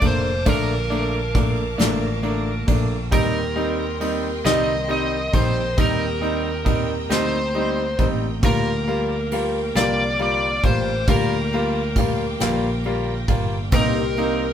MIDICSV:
0, 0, Header, 1, 7, 480
1, 0, Start_track
1, 0, Tempo, 883652
1, 252, Time_signature, 6, 3, 24, 8
1, 7893, End_track
2, 0, Start_track
2, 0, Title_t, "String section"
2, 0, Program_c, 0, 48
2, 0, Note_on_c, 0, 58, 70
2, 0, Note_on_c, 0, 77, 63
2, 0, Note_on_c, 0, 81, 59
2, 0, Note_on_c, 0, 86, 79
2, 1671, Note_off_c, 0, 81, 0
2, 1672, Note_off_c, 0, 77, 0
2, 1672, Note_off_c, 0, 86, 0
2, 1694, Note_on_c, 0, 84, 78
2, 1696, Note_on_c, 0, 75, 69
2, 1697, Note_on_c, 0, 79, 74
2, 3123, Note_off_c, 0, 84, 0
2, 3145, Note_on_c, 0, 82, 82
2, 4557, Note_off_c, 0, 75, 0
2, 4557, Note_off_c, 0, 79, 0
2, 4568, Note_off_c, 0, 82, 0
2, 4580, Note_on_c, 0, 77, 68
2, 4580, Note_on_c, 0, 79, 65
2, 4580, Note_on_c, 0, 86, 73
2, 7431, Note_off_c, 0, 58, 0
2, 7435, Note_off_c, 0, 77, 0
2, 7435, Note_off_c, 0, 86, 0
2, 7459, Note_on_c, 0, 75, 73
2, 7460, Note_on_c, 0, 84, 86
2, 7461, Note_on_c, 0, 70, 78
2, 7893, Note_off_c, 0, 70, 0
2, 7893, Note_off_c, 0, 75, 0
2, 7893, Note_off_c, 0, 79, 0
2, 7893, Note_off_c, 0, 84, 0
2, 7893, End_track
3, 0, Start_track
3, 0, Title_t, "Electric slide guitar"
3, 0, Program_c, 1, 29
3, 37, Note_on_c, 1, 72, 94
3, 249, Note_off_c, 1, 72, 0
3, 268, Note_on_c, 1, 70, 85
3, 1442, Note_off_c, 1, 70, 0
3, 1706, Note_on_c, 1, 70, 91
3, 2421, Note_on_c, 1, 75, 102
3, 2444, Note_off_c, 1, 70, 0
3, 2661, Note_off_c, 1, 75, 0
3, 2668, Note_on_c, 1, 75, 92
3, 2887, Note_off_c, 1, 75, 0
3, 2904, Note_on_c, 1, 72, 102
3, 3125, Note_off_c, 1, 72, 0
3, 3154, Note_on_c, 1, 70, 95
3, 3873, Note_on_c, 1, 72, 85
3, 3888, Note_off_c, 1, 70, 0
3, 4384, Note_off_c, 1, 72, 0
3, 4593, Note_on_c, 1, 70, 82
3, 5305, Note_on_c, 1, 74, 102
3, 5327, Note_off_c, 1, 70, 0
3, 5546, Note_off_c, 1, 74, 0
3, 5552, Note_on_c, 1, 74, 83
3, 5769, Note_off_c, 1, 74, 0
3, 5786, Note_on_c, 1, 72, 89
3, 6023, Note_off_c, 1, 72, 0
3, 6026, Note_on_c, 1, 70, 75
3, 7198, Note_off_c, 1, 70, 0
3, 7466, Note_on_c, 1, 70, 93
3, 7893, Note_off_c, 1, 70, 0
3, 7893, End_track
4, 0, Start_track
4, 0, Title_t, "Steel-string acoustic guitar"
4, 0, Program_c, 2, 25
4, 7, Note_on_c, 2, 69, 49
4, 15, Note_on_c, 2, 62, 49
4, 19, Note_on_c, 2, 58, 44
4, 25, Note_on_c, 2, 53, 40
4, 249, Note_off_c, 2, 53, 0
4, 250, Note_off_c, 2, 58, 0
4, 250, Note_off_c, 2, 69, 0
4, 251, Note_on_c, 2, 46, 71
4, 252, Note_on_c, 2, 50, 74
4, 254, Note_off_c, 2, 62, 0
4, 255, Note_on_c, 2, 53, 82
4, 257, Note_on_c, 2, 58, 74
4, 259, Note_on_c, 2, 62, 80
4, 726, Note_off_c, 2, 53, 0
4, 732, Note_on_c, 2, 53, 58
4, 733, Note_off_c, 2, 46, 0
4, 733, Note_off_c, 2, 50, 0
4, 735, Note_off_c, 2, 62, 0
4, 736, Note_off_c, 2, 58, 0
4, 738, Note_on_c, 2, 58, 55
4, 741, Note_on_c, 2, 62, 60
4, 967, Note_off_c, 2, 62, 0
4, 970, Note_off_c, 2, 58, 0
4, 972, Note_off_c, 2, 53, 0
4, 974, Note_on_c, 2, 62, 76
4, 977, Note_on_c, 2, 58, 68
4, 978, Note_on_c, 2, 53, 71
4, 980, Note_on_c, 2, 50, 72
4, 1450, Note_on_c, 2, 69, 56
4, 1451, Note_off_c, 2, 62, 0
4, 1457, Note_off_c, 2, 53, 0
4, 1457, Note_on_c, 2, 62, 57
4, 1458, Note_off_c, 2, 50, 0
4, 1461, Note_off_c, 2, 58, 0
4, 1463, Note_on_c, 2, 58, 48
4, 1469, Note_on_c, 2, 53, 52
4, 1693, Note_off_c, 2, 69, 0
4, 1693, Note_on_c, 2, 51, 67
4, 1695, Note_off_c, 2, 53, 0
4, 1697, Note_off_c, 2, 58, 0
4, 1697, Note_off_c, 2, 62, 0
4, 1697, Note_on_c, 2, 55, 83
4, 1699, Note_on_c, 2, 60, 78
4, 1702, Note_on_c, 2, 67, 71
4, 1705, Note_on_c, 2, 70, 79
4, 2169, Note_off_c, 2, 55, 0
4, 2170, Note_off_c, 2, 60, 0
4, 2171, Note_on_c, 2, 55, 61
4, 2176, Note_off_c, 2, 51, 0
4, 2176, Note_on_c, 2, 60, 65
4, 2182, Note_off_c, 2, 67, 0
4, 2184, Note_on_c, 2, 67, 62
4, 2186, Note_off_c, 2, 70, 0
4, 2188, Note_on_c, 2, 70, 70
4, 2408, Note_off_c, 2, 70, 0
4, 2411, Note_off_c, 2, 67, 0
4, 2414, Note_off_c, 2, 55, 0
4, 2414, Note_off_c, 2, 60, 0
4, 2415, Note_on_c, 2, 70, 70
4, 2417, Note_on_c, 2, 67, 71
4, 2420, Note_on_c, 2, 60, 64
4, 2422, Note_on_c, 2, 55, 60
4, 2425, Note_on_c, 2, 51, 59
4, 2889, Note_off_c, 2, 70, 0
4, 2891, Note_on_c, 2, 70, 45
4, 2897, Note_off_c, 2, 67, 0
4, 2899, Note_off_c, 2, 60, 0
4, 2899, Note_on_c, 2, 67, 47
4, 2902, Note_off_c, 2, 51, 0
4, 2906, Note_on_c, 2, 60, 39
4, 3131, Note_off_c, 2, 60, 0
4, 3132, Note_on_c, 2, 51, 74
4, 3133, Note_off_c, 2, 55, 0
4, 3134, Note_off_c, 2, 67, 0
4, 3135, Note_off_c, 2, 70, 0
4, 3135, Note_on_c, 2, 55, 74
4, 3138, Note_on_c, 2, 60, 80
4, 3140, Note_on_c, 2, 67, 87
4, 3142, Note_on_c, 2, 70, 82
4, 3612, Note_off_c, 2, 55, 0
4, 3612, Note_off_c, 2, 60, 0
4, 3614, Note_on_c, 2, 55, 58
4, 3616, Note_off_c, 2, 51, 0
4, 3619, Note_on_c, 2, 60, 60
4, 3622, Note_off_c, 2, 67, 0
4, 3625, Note_on_c, 2, 67, 60
4, 3626, Note_off_c, 2, 70, 0
4, 3628, Note_on_c, 2, 70, 64
4, 3848, Note_off_c, 2, 70, 0
4, 3850, Note_off_c, 2, 67, 0
4, 3854, Note_off_c, 2, 60, 0
4, 3854, Note_on_c, 2, 70, 62
4, 3856, Note_off_c, 2, 55, 0
4, 3857, Note_on_c, 2, 67, 62
4, 3860, Note_on_c, 2, 60, 64
4, 3864, Note_on_c, 2, 55, 58
4, 4332, Note_off_c, 2, 70, 0
4, 4334, Note_on_c, 2, 70, 48
4, 4339, Note_off_c, 2, 60, 0
4, 4341, Note_off_c, 2, 67, 0
4, 4343, Note_on_c, 2, 67, 40
4, 4349, Note_on_c, 2, 60, 39
4, 4572, Note_on_c, 2, 50, 74
4, 4574, Note_off_c, 2, 55, 0
4, 4576, Note_off_c, 2, 70, 0
4, 4576, Note_on_c, 2, 53, 75
4, 4577, Note_off_c, 2, 60, 0
4, 4577, Note_off_c, 2, 67, 0
4, 4579, Note_on_c, 2, 58, 79
4, 4581, Note_on_c, 2, 62, 78
4, 4584, Note_on_c, 2, 67, 74
4, 5045, Note_off_c, 2, 53, 0
4, 5052, Note_on_c, 2, 53, 51
4, 5055, Note_off_c, 2, 50, 0
4, 5056, Note_off_c, 2, 58, 0
4, 5056, Note_off_c, 2, 62, 0
4, 5058, Note_on_c, 2, 58, 65
4, 5062, Note_on_c, 2, 62, 64
4, 5066, Note_off_c, 2, 67, 0
4, 5068, Note_on_c, 2, 67, 73
4, 5288, Note_off_c, 2, 67, 0
4, 5292, Note_off_c, 2, 62, 0
4, 5294, Note_off_c, 2, 58, 0
4, 5295, Note_off_c, 2, 53, 0
4, 5295, Note_on_c, 2, 67, 70
4, 5298, Note_on_c, 2, 62, 64
4, 5300, Note_on_c, 2, 58, 65
4, 5302, Note_on_c, 2, 53, 62
4, 5304, Note_on_c, 2, 50, 58
4, 5771, Note_off_c, 2, 67, 0
4, 5773, Note_on_c, 2, 67, 52
4, 5774, Note_off_c, 2, 62, 0
4, 5780, Note_off_c, 2, 53, 0
4, 5781, Note_off_c, 2, 50, 0
4, 5781, Note_on_c, 2, 62, 45
4, 5784, Note_off_c, 2, 58, 0
4, 5786, Note_on_c, 2, 58, 43
4, 6012, Note_off_c, 2, 58, 0
4, 6013, Note_on_c, 2, 50, 73
4, 6015, Note_off_c, 2, 67, 0
4, 6016, Note_off_c, 2, 62, 0
4, 6017, Note_on_c, 2, 53, 73
4, 6019, Note_on_c, 2, 58, 80
4, 6022, Note_on_c, 2, 62, 81
4, 6026, Note_on_c, 2, 67, 73
4, 6484, Note_off_c, 2, 53, 0
4, 6490, Note_on_c, 2, 53, 60
4, 6494, Note_off_c, 2, 62, 0
4, 6495, Note_off_c, 2, 50, 0
4, 6495, Note_off_c, 2, 58, 0
4, 6497, Note_on_c, 2, 58, 66
4, 6501, Note_on_c, 2, 62, 62
4, 6504, Note_off_c, 2, 67, 0
4, 6506, Note_on_c, 2, 67, 67
4, 6726, Note_off_c, 2, 67, 0
4, 6728, Note_off_c, 2, 62, 0
4, 6730, Note_off_c, 2, 58, 0
4, 6732, Note_on_c, 2, 67, 85
4, 6733, Note_off_c, 2, 53, 0
4, 6735, Note_on_c, 2, 62, 78
4, 6737, Note_on_c, 2, 58, 76
4, 6740, Note_on_c, 2, 53, 64
4, 6743, Note_on_c, 2, 50, 72
4, 7209, Note_off_c, 2, 67, 0
4, 7211, Note_on_c, 2, 67, 57
4, 7215, Note_off_c, 2, 62, 0
4, 7218, Note_off_c, 2, 53, 0
4, 7219, Note_off_c, 2, 50, 0
4, 7221, Note_on_c, 2, 62, 61
4, 7226, Note_off_c, 2, 58, 0
4, 7228, Note_on_c, 2, 58, 49
4, 7448, Note_off_c, 2, 58, 0
4, 7448, Note_on_c, 2, 48, 81
4, 7452, Note_on_c, 2, 55, 83
4, 7453, Note_off_c, 2, 67, 0
4, 7455, Note_off_c, 2, 62, 0
4, 7455, Note_on_c, 2, 58, 80
4, 7457, Note_on_c, 2, 63, 80
4, 7459, Note_on_c, 2, 67, 89
4, 7893, Note_off_c, 2, 48, 0
4, 7893, Note_off_c, 2, 55, 0
4, 7893, Note_off_c, 2, 58, 0
4, 7893, Note_off_c, 2, 63, 0
4, 7893, Note_off_c, 2, 67, 0
4, 7893, End_track
5, 0, Start_track
5, 0, Title_t, "Grand piano"
5, 0, Program_c, 3, 0
5, 5, Note_on_c, 3, 57, 67
5, 7, Note_on_c, 3, 62, 78
5, 9, Note_on_c, 3, 58, 60
5, 149, Note_off_c, 3, 57, 0
5, 149, Note_off_c, 3, 62, 0
5, 151, Note_off_c, 3, 58, 0
5, 248, Note_on_c, 3, 57, 87
5, 248, Note_on_c, 3, 58, 80
5, 249, Note_on_c, 3, 62, 99
5, 391, Note_off_c, 3, 57, 0
5, 391, Note_off_c, 3, 58, 0
5, 391, Note_off_c, 3, 62, 0
5, 488, Note_on_c, 3, 57, 73
5, 490, Note_on_c, 3, 62, 86
5, 492, Note_on_c, 3, 58, 69
5, 631, Note_off_c, 3, 57, 0
5, 632, Note_off_c, 3, 62, 0
5, 633, Note_off_c, 3, 58, 0
5, 727, Note_on_c, 3, 57, 68
5, 730, Note_on_c, 3, 58, 65
5, 731, Note_on_c, 3, 62, 81
5, 871, Note_off_c, 3, 57, 0
5, 873, Note_off_c, 3, 58, 0
5, 873, Note_off_c, 3, 62, 0
5, 964, Note_on_c, 3, 57, 80
5, 968, Note_on_c, 3, 58, 69
5, 968, Note_on_c, 3, 62, 91
5, 1110, Note_off_c, 3, 57, 0
5, 1112, Note_off_c, 3, 58, 0
5, 1112, Note_off_c, 3, 62, 0
5, 1208, Note_on_c, 3, 57, 70
5, 1211, Note_on_c, 3, 58, 72
5, 1212, Note_on_c, 3, 62, 84
5, 1352, Note_off_c, 3, 57, 0
5, 1353, Note_off_c, 3, 58, 0
5, 1354, Note_off_c, 3, 62, 0
5, 1450, Note_on_c, 3, 57, 66
5, 1452, Note_on_c, 3, 58, 60
5, 1456, Note_on_c, 3, 62, 78
5, 1593, Note_off_c, 3, 57, 0
5, 1594, Note_off_c, 3, 58, 0
5, 1597, Note_off_c, 3, 62, 0
5, 1691, Note_on_c, 3, 55, 84
5, 1692, Note_on_c, 3, 60, 77
5, 1693, Note_on_c, 3, 63, 96
5, 1834, Note_off_c, 3, 55, 0
5, 1834, Note_off_c, 3, 60, 0
5, 1835, Note_off_c, 3, 63, 0
5, 1931, Note_on_c, 3, 55, 73
5, 1933, Note_on_c, 3, 60, 70
5, 1933, Note_on_c, 3, 63, 79
5, 2074, Note_off_c, 3, 55, 0
5, 2075, Note_off_c, 3, 60, 0
5, 2075, Note_off_c, 3, 63, 0
5, 2173, Note_on_c, 3, 55, 72
5, 2178, Note_on_c, 3, 60, 61
5, 2178, Note_on_c, 3, 63, 78
5, 2316, Note_off_c, 3, 55, 0
5, 2318, Note_off_c, 3, 60, 0
5, 2318, Note_off_c, 3, 63, 0
5, 2415, Note_on_c, 3, 55, 88
5, 2416, Note_on_c, 3, 60, 80
5, 2418, Note_on_c, 3, 63, 103
5, 2557, Note_off_c, 3, 55, 0
5, 2557, Note_off_c, 3, 60, 0
5, 2558, Note_off_c, 3, 63, 0
5, 2651, Note_on_c, 3, 55, 77
5, 2655, Note_on_c, 3, 63, 86
5, 2657, Note_on_c, 3, 60, 66
5, 2795, Note_off_c, 3, 55, 0
5, 2797, Note_off_c, 3, 63, 0
5, 2798, Note_off_c, 3, 60, 0
5, 2895, Note_on_c, 3, 55, 62
5, 2895, Note_on_c, 3, 60, 60
5, 2898, Note_on_c, 3, 63, 69
5, 3037, Note_off_c, 3, 55, 0
5, 3037, Note_off_c, 3, 60, 0
5, 3038, Note_off_c, 3, 63, 0
5, 3136, Note_on_c, 3, 55, 78
5, 3137, Note_on_c, 3, 60, 78
5, 3139, Note_on_c, 3, 63, 96
5, 3278, Note_off_c, 3, 55, 0
5, 3278, Note_off_c, 3, 60, 0
5, 3279, Note_off_c, 3, 63, 0
5, 3373, Note_on_c, 3, 55, 73
5, 3375, Note_on_c, 3, 63, 80
5, 3377, Note_on_c, 3, 60, 72
5, 3516, Note_off_c, 3, 55, 0
5, 3517, Note_off_c, 3, 63, 0
5, 3518, Note_off_c, 3, 60, 0
5, 3609, Note_on_c, 3, 60, 59
5, 3612, Note_on_c, 3, 55, 66
5, 3613, Note_on_c, 3, 63, 76
5, 3754, Note_off_c, 3, 60, 0
5, 3755, Note_off_c, 3, 55, 0
5, 3756, Note_off_c, 3, 63, 0
5, 3853, Note_on_c, 3, 55, 77
5, 3855, Note_on_c, 3, 60, 82
5, 3858, Note_on_c, 3, 63, 90
5, 3996, Note_off_c, 3, 55, 0
5, 3997, Note_off_c, 3, 60, 0
5, 3999, Note_off_c, 3, 63, 0
5, 4099, Note_on_c, 3, 55, 75
5, 4099, Note_on_c, 3, 60, 60
5, 4101, Note_on_c, 3, 63, 78
5, 4239, Note_off_c, 3, 55, 0
5, 4239, Note_off_c, 3, 60, 0
5, 4240, Note_off_c, 3, 63, 0
5, 4338, Note_on_c, 3, 60, 61
5, 4340, Note_on_c, 3, 55, 64
5, 4340, Note_on_c, 3, 63, 65
5, 4479, Note_off_c, 3, 55, 0
5, 4479, Note_off_c, 3, 60, 0
5, 4480, Note_off_c, 3, 63, 0
5, 4580, Note_on_c, 3, 55, 80
5, 4581, Note_on_c, 3, 58, 76
5, 4584, Note_on_c, 3, 65, 93
5, 4720, Note_off_c, 3, 55, 0
5, 4720, Note_off_c, 3, 58, 0
5, 4721, Note_off_c, 3, 65, 0
5, 4820, Note_on_c, 3, 55, 69
5, 4822, Note_on_c, 3, 58, 67
5, 4824, Note_on_c, 3, 65, 76
5, 4960, Note_off_c, 3, 55, 0
5, 4960, Note_off_c, 3, 58, 0
5, 4962, Note_off_c, 3, 65, 0
5, 5063, Note_on_c, 3, 55, 65
5, 5064, Note_on_c, 3, 58, 65
5, 5069, Note_on_c, 3, 65, 76
5, 5201, Note_off_c, 3, 55, 0
5, 5201, Note_off_c, 3, 58, 0
5, 5204, Note_off_c, 3, 65, 0
5, 5297, Note_on_c, 3, 55, 78
5, 5302, Note_on_c, 3, 58, 83
5, 5303, Note_on_c, 3, 65, 92
5, 5438, Note_off_c, 3, 55, 0
5, 5440, Note_off_c, 3, 58, 0
5, 5441, Note_off_c, 3, 65, 0
5, 5536, Note_on_c, 3, 55, 80
5, 5539, Note_on_c, 3, 58, 62
5, 5540, Note_on_c, 3, 65, 84
5, 5677, Note_off_c, 3, 55, 0
5, 5679, Note_off_c, 3, 58, 0
5, 5679, Note_off_c, 3, 65, 0
5, 5781, Note_on_c, 3, 55, 61
5, 5781, Note_on_c, 3, 58, 58
5, 5782, Note_on_c, 3, 65, 74
5, 5920, Note_off_c, 3, 55, 0
5, 5920, Note_off_c, 3, 58, 0
5, 5920, Note_off_c, 3, 65, 0
5, 6021, Note_on_c, 3, 55, 87
5, 6024, Note_on_c, 3, 58, 80
5, 6025, Note_on_c, 3, 65, 90
5, 6160, Note_off_c, 3, 55, 0
5, 6161, Note_off_c, 3, 58, 0
5, 6161, Note_off_c, 3, 65, 0
5, 6267, Note_on_c, 3, 55, 79
5, 6268, Note_on_c, 3, 58, 69
5, 6269, Note_on_c, 3, 65, 85
5, 6402, Note_off_c, 3, 55, 0
5, 6403, Note_off_c, 3, 58, 0
5, 6403, Note_off_c, 3, 65, 0
5, 6506, Note_on_c, 3, 55, 64
5, 6510, Note_on_c, 3, 58, 68
5, 6510, Note_on_c, 3, 65, 74
5, 6642, Note_off_c, 3, 55, 0
5, 6644, Note_off_c, 3, 58, 0
5, 6644, Note_off_c, 3, 65, 0
5, 6739, Note_on_c, 3, 55, 88
5, 6741, Note_on_c, 3, 58, 83
5, 6747, Note_on_c, 3, 65, 94
5, 6878, Note_off_c, 3, 55, 0
5, 6879, Note_off_c, 3, 58, 0
5, 6882, Note_off_c, 3, 65, 0
5, 6982, Note_on_c, 3, 55, 76
5, 6985, Note_on_c, 3, 58, 74
5, 6986, Note_on_c, 3, 65, 82
5, 7120, Note_off_c, 3, 55, 0
5, 7121, Note_off_c, 3, 58, 0
5, 7121, Note_off_c, 3, 65, 0
5, 7217, Note_on_c, 3, 55, 61
5, 7219, Note_on_c, 3, 58, 68
5, 7221, Note_on_c, 3, 65, 76
5, 7357, Note_off_c, 3, 55, 0
5, 7358, Note_off_c, 3, 58, 0
5, 7359, Note_off_c, 3, 65, 0
5, 7461, Note_on_c, 3, 58, 86
5, 7464, Note_on_c, 3, 60, 79
5, 7466, Note_on_c, 3, 63, 95
5, 7599, Note_off_c, 3, 58, 0
5, 7600, Note_off_c, 3, 60, 0
5, 7601, Note_off_c, 3, 63, 0
5, 7702, Note_on_c, 3, 58, 81
5, 7702, Note_on_c, 3, 63, 85
5, 7704, Note_on_c, 3, 60, 68
5, 7839, Note_off_c, 3, 58, 0
5, 7839, Note_off_c, 3, 63, 0
5, 7840, Note_off_c, 3, 60, 0
5, 7893, End_track
6, 0, Start_track
6, 0, Title_t, "Fingered electric bass"
6, 0, Program_c, 4, 33
6, 13, Note_on_c, 4, 29, 82
6, 238, Note_off_c, 4, 29, 0
6, 249, Note_on_c, 4, 34, 103
6, 951, Note_off_c, 4, 34, 0
6, 976, Note_on_c, 4, 33, 97
6, 1435, Note_off_c, 4, 33, 0
6, 1456, Note_on_c, 4, 34, 85
6, 1682, Note_off_c, 4, 34, 0
6, 1696, Note_on_c, 4, 39, 101
6, 2395, Note_off_c, 4, 39, 0
6, 2416, Note_on_c, 4, 36, 89
6, 2876, Note_off_c, 4, 36, 0
6, 2899, Note_on_c, 4, 34, 77
6, 3124, Note_off_c, 4, 34, 0
6, 3141, Note_on_c, 4, 39, 107
6, 3838, Note_off_c, 4, 39, 0
6, 3859, Note_on_c, 4, 38, 85
6, 4317, Note_off_c, 4, 38, 0
6, 4338, Note_on_c, 4, 33, 80
6, 4564, Note_off_c, 4, 33, 0
6, 4577, Note_on_c, 4, 38, 102
6, 5276, Note_off_c, 4, 38, 0
6, 5297, Note_on_c, 4, 36, 80
6, 5755, Note_off_c, 4, 36, 0
6, 5779, Note_on_c, 4, 33, 84
6, 6004, Note_off_c, 4, 33, 0
6, 6018, Note_on_c, 4, 38, 111
6, 6715, Note_off_c, 4, 38, 0
6, 6739, Note_on_c, 4, 34, 99
6, 7195, Note_off_c, 4, 34, 0
6, 7215, Note_on_c, 4, 31, 89
6, 7441, Note_off_c, 4, 31, 0
6, 7455, Note_on_c, 4, 36, 112
6, 7893, Note_off_c, 4, 36, 0
6, 7893, End_track
7, 0, Start_track
7, 0, Title_t, "Drums"
7, 7, Note_on_c, 9, 51, 61
7, 10, Note_on_c, 9, 36, 83
7, 61, Note_off_c, 9, 51, 0
7, 65, Note_off_c, 9, 36, 0
7, 249, Note_on_c, 9, 51, 79
7, 252, Note_on_c, 9, 36, 100
7, 303, Note_off_c, 9, 51, 0
7, 306, Note_off_c, 9, 36, 0
7, 496, Note_on_c, 9, 51, 35
7, 551, Note_off_c, 9, 51, 0
7, 733, Note_on_c, 9, 36, 86
7, 733, Note_on_c, 9, 51, 61
7, 787, Note_off_c, 9, 36, 0
7, 787, Note_off_c, 9, 51, 0
7, 972, Note_on_c, 9, 51, 72
7, 980, Note_on_c, 9, 38, 96
7, 1027, Note_off_c, 9, 51, 0
7, 1034, Note_off_c, 9, 38, 0
7, 1210, Note_on_c, 9, 51, 37
7, 1265, Note_off_c, 9, 51, 0
7, 1455, Note_on_c, 9, 36, 88
7, 1455, Note_on_c, 9, 51, 60
7, 1509, Note_off_c, 9, 51, 0
7, 1510, Note_off_c, 9, 36, 0
7, 1694, Note_on_c, 9, 51, 75
7, 1696, Note_on_c, 9, 36, 95
7, 1748, Note_off_c, 9, 51, 0
7, 1750, Note_off_c, 9, 36, 0
7, 1938, Note_on_c, 9, 51, 32
7, 1992, Note_off_c, 9, 51, 0
7, 2177, Note_on_c, 9, 51, 65
7, 2231, Note_off_c, 9, 51, 0
7, 2417, Note_on_c, 9, 51, 67
7, 2424, Note_on_c, 9, 38, 105
7, 2471, Note_off_c, 9, 51, 0
7, 2478, Note_off_c, 9, 38, 0
7, 2654, Note_on_c, 9, 51, 40
7, 2709, Note_off_c, 9, 51, 0
7, 2898, Note_on_c, 9, 36, 84
7, 2898, Note_on_c, 9, 51, 59
7, 2952, Note_off_c, 9, 36, 0
7, 2952, Note_off_c, 9, 51, 0
7, 3139, Note_on_c, 9, 36, 98
7, 3139, Note_on_c, 9, 51, 78
7, 3193, Note_off_c, 9, 36, 0
7, 3193, Note_off_c, 9, 51, 0
7, 3383, Note_on_c, 9, 51, 34
7, 3437, Note_off_c, 9, 51, 0
7, 3618, Note_on_c, 9, 36, 83
7, 3618, Note_on_c, 9, 51, 60
7, 3672, Note_off_c, 9, 36, 0
7, 3673, Note_off_c, 9, 51, 0
7, 3858, Note_on_c, 9, 51, 63
7, 3865, Note_on_c, 9, 38, 93
7, 3912, Note_off_c, 9, 51, 0
7, 3919, Note_off_c, 9, 38, 0
7, 4094, Note_on_c, 9, 51, 37
7, 4149, Note_off_c, 9, 51, 0
7, 4338, Note_on_c, 9, 51, 58
7, 4339, Note_on_c, 9, 36, 86
7, 4393, Note_off_c, 9, 36, 0
7, 4393, Note_off_c, 9, 51, 0
7, 4579, Note_on_c, 9, 36, 111
7, 4579, Note_on_c, 9, 51, 81
7, 4633, Note_off_c, 9, 36, 0
7, 4633, Note_off_c, 9, 51, 0
7, 4822, Note_on_c, 9, 51, 34
7, 4877, Note_off_c, 9, 51, 0
7, 5060, Note_on_c, 9, 51, 64
7, 5114, Note_off_c, 9, 51, 0
7, 5297, Note_on_c, 9, 51, 62
7, 5305, Note_on_c, 9, 38, 94
7, 5351, Note_off_c, 9, 51, 0
7, 5359, Note_off_c, 9, 38, 0
7, 5534, Note_on_c, 9, 51, 37
7, 5588, Note_off_c, 9, 51, 0
7, 5776, Note_on_c, 9, 51, 59
7, 5778, Note_on_c, 9, 36, 92
7, 5830, Note_off_c, 9, 51, 0
7, 5832, Note_off_c, 9, 36, 0
7, 6016, Note_on_c, 9, 51, 76
7, 6017, Note_on_c, 9, 36, 99
7, 6070, Note_off_c, 9, 51, 0
7, 6071, Note_off_c, 9, 36, 0
7, 6260, Note_on_c, 9, 51, 36
7, 6314, Note_off_c, 9, 51, 0
7, 6497, Note_on_c, 9, 36, 83
7, 6497, Note_on_c, 9, 51, 65
7, 6551, Note_off_c, 9, 36, 0
7, 6551, Note_off_c, 9, 51, 0
7, 6735, Note_on_c, 9, 51, 64
7, 6742, Note_on_c, 9, 38, 113
7, 6789, Note_off_c, 9, 51, 0
7, 6797, Note_off_c, 9, 38, 0
7, 6971, Note_on_c, 9, 51, 35
7, 7026, Note_off_c, 9, 51, 0
7, 7214, Note_on_c, 9, 51, 60
7, 7215, Note_on_c, 9, 36, 86
7, 7268, Note_off_c, 9, 51, 0
7, 7270, Note_off_c, 9, 36, 0
7, 7451, Note_on_c, 9, 51, 82
7, 7455, Note_on_c, 9, 36, 110
7, 7505, Note_off_c, 9, 51, 0
7, 7509, Note_off_c, 9, 36, 0
7, 7697, Note_on_c, 9, 51, 36
7, 7751, Note_off_c, 9, 51, 0
7, 7893, End_track
0, 0, End_of_file